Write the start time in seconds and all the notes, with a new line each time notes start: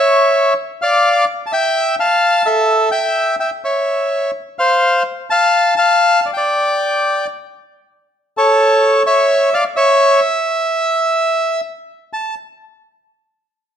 Already playing: C#5 E5
0.82 D5 F5
1.46 A5
1.52 E5 G5
2.00 F5 A5
2.46 A4 E5
2.91 E5 G5
3.40 E5 G5
3.64 C#5 E5
4.59 C5 F5
5.30 F5 A5
5.76 F5 A5
6.22 F5
6.26 D5
6.33 D5 G5
8.37 A4 C#5
9.06 C#5 E5
9.54 D5 F5
9.76 C#5 E5
12.13 A5